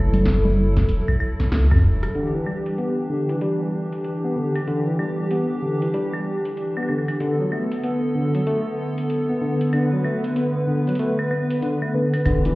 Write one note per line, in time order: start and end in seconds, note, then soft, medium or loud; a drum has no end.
0.00 0.83 F#1 loud
0.00 2.11 F#3 medium
0.00 2.11 E4 medium
0.00 0.89 A4 medium
0.00 2.11 A4 loud
0.14 closed hi-hat medium
0.14 low conga loud
0.26 kick loud
0.26 snare loud
0.26 closed hi-hat medium
0.45 low conga medium
0.77 kick loud
0.77 snare medium
0.77 closed hi-hat medium
0.89 1.02 E1 medium
0.89 closed hi-hat medium
1.08 kick loud
1.08 high woodblock medium
1.20 high woodblock medium
1.40 kick loud
1.40 snare medium
1.40 closed hi-hat medium
1.52 1.73 C#2 medium
1.52 cross-stick medium
1.52 snare loud
1.52 closed hi-hat medium
1.71 1.80 F#2 medium
1.71 kick loud
1.71 cross-stick medium
1.71 high woodblock medium
1.84 2.08 E1 medium
2.03 cross-stick medium
2.03 closed hi-hat medium
2.03 high woodblock medium
2.15 2.30 D3 medium
2.15 7.16 E3 medium
2.15 7.16 D4 medium
2.15 7.16 G4 loud
2.15 closed hi-hat soft
2.34 2.44 E3 medium
2.46 2.65 G3 medium
2.46 high woodblock medium
2.66 closed hi-hat medium
2.78 2.93 B3 medium
2.78 closed hi-hat soft
3.10 3.28 D3 medium
3.29 3.35 E3 medium
3.29 closed hi-hat medium
3.41 3.60 G3 medium
3.41 closed hi-hat soft
3.92 closed hi-hat medium
4.04 closed hi-hat medium
4.24 4.36 B3 medium
4.36 4.55 D3 medium
4.56 closed hi-hat medium
4.56 high woodblock soft
4.67 4.83 D3 medium
4.67 closed hi-hat medium
4.87 4.97 E3 medium
4.99 5.18 G3 medium
4.99 high woodblock medium
5.31 5.46 B3 medium
5.31 closed hi-hat medium
5.62 5.81 D3 medium
5.82 5.88 E3 medium
5.82 closed hi-hat medium
5.94 6.13 G3 medium
5.94 closed hi-hat medium
6.13 high woodblock medium
6.45 closed hi-hat medium
6.57 closed hi-hat medium
6.77 6.88 B3 medium
6.77 high woodblock medium
6.83 high woodblock soft
6.89 7.07 D3 medium
6.89 high woodblock soft
6.99 high woodblock soft
7.08 closed hi-hat medium
7.08 high woodblock medium
7.20 7.36 D3 medium
7.20 12.22 D3 medium
7.20 12.22 B3 medium
7.20 9.71 A4 medium
7.20 closed hi-hat medium
7.40 7.49 F#3 medium
7.52 7.71 A3 medium
7.52 high woodblock soft
7.72 closed hi-hat medium
7.84 7.99 B3 medium
7.84 closed hi-hat soft
8.15 8.34 D3 medium
8.35 8.40 F#3 medium
8.35 closed hi-hat medium
8.47 8.65 A3 medium
8.47 closed hi-hat medium
8.98 closed hi-hat medium
9.10 closed hi-hat medium
9.30 9.41 B3 medium
9.42 9.60 D3 medium
9.61 closed hi-hat medium
9.73 9.88 D3 loud
9.73 12.23 B4 medium
9.73 closed hi-hat soft
9.73 high woodblock medium
9.93 10.02 F#3 medium
10.04 10.23 A3 medium
10.04 high woodblock soft
10.24 closed hi-hat medium
10.36 10.51 B3 medium
10.36 closed hi-hat soft
10.68 10.86 D3 medium
10.87 10.93 F#3 medium
10.87 closed hi-hat soft
10.95 closed hi-hat soft
10.99 11.18 A3 medium
10.99 closed hi-hat medium
11.19 high woodblock medium
11.31 11.46 B3 medium
11.31 high woodblock medium
11.51 closed hi-hat medium
11.62 11.78 D3 loud
11.62 closed hi-hat soft
11.82 11.93 A3 medium
11.82 high woodblock medium
11.94 12.13 D3 medium
11.94 12.55 B4 medium
12.14 12.25 B3 medium
12.14 closed hi-hat medium
12.14 high woodblock soft
12.25 12.55 E1 loud
12.25 12.41 D3 loud
12.25 12.55 E3 medium
12.25 12.55 D4 medium
12.25 12.55 G4 medium
12.25 kick loud
12.25 closed hi-hat medium
12.25 high woodblock medium
12.45 12.55 E3 medium
12.45 closed hi-hat soft